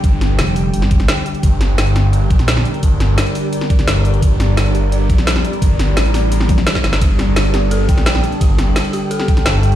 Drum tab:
RD |----------------|----------------|----------------|----------------|
HH |x-x-xxo-x-xxx-xx|x-x-xxx-x-xxx-xx|x-x-xxo-x-xxx-xx|x-x-xxx-x-xxx-xx|
SD |--o-o----o-oo---|--o-o-o----ooo--|--o-o----o-oo---|--o-o------ooo--|
T1 |----------------|----------------|----------------|----------------|
BD |o---------o-----|o---------o-----|o---------o-----|o---------o-----|

RD |----------------|x---x---x---x---|x---x---x---x---|
HH |x-x-xxo-x-xxx-xx|x-x-xxx-x-xxx-xx|x-x-xxo-x-xxx-xx|
SD |--o-o-o--o-ooooo|--o-o-o----ooo--|--o-o----o-oo---|
T1 |----------oo----|----------------|----------------|
BD |o---------o--o--|o---------o-----|o---------o-----|